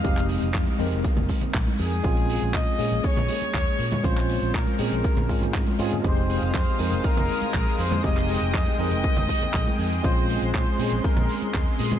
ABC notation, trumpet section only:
X:1
M:4/4
L:1/8
Q:1/4=120
K:Fm
V:1 name="Trumpet section"
f z6 A- | A2 e2 d4 | c2 B4 z A | c2 c2 B3 c |
e3 e4 A | c2 c2 B2 z e |]